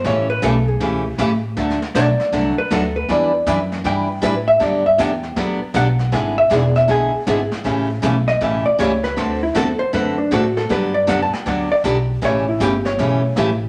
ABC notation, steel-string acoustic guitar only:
X:1
M:4/4
L:1/16
Q:"Swing" 1/4=158
K:G
V:1 name="Steel-string acoustic guitar"
[^C,E,A,^CG]2 z2 [C,E,A,CG] z3 [C,E,A,CG]2 z2 [C,E,A,CG] z3 | [D,F,A,DF]2 z2 [D,F,A,DF] z3 [D,F,A,DF]2 z2 [D,F,A,DF] z3 | [E,G,DEB]2 z2 [E,G,DEB] z3 [E,G,DEB]2 z2 [E,G,DEB] z3 | [D,F,B,DG]2 z2 [D,F,B,DG] z3 [D,F,B,DG]2 z2 [D,F,B,DG] z3 |
[D,^G,B,E^G]2 z2 [D,G,B,EG] z3 [D,G,B,EG]2 z2 [D,G,B,EG] z3 | [^C,E,A,^CG]2 z2 [C,E,A,CG] z3 [C,E,A,CG]2 z2 [C,E,A,CG] z3 | [D,A,CFA]2 z2 [D,A,CFA] z3 [D,A,CFA]2 z2 [D,A,CFA] z3 | [D,F,B,DG]2 z2 [D,F,B,DG] z3 [D,F,B,DG]2 z2 [D,F,B,DG] z3 |
[^C,E,A,^CG]2 z2 [C,E,A,CG] z3 [C,E,A,CG]2 z2 [C,E,A,CG] z3 |]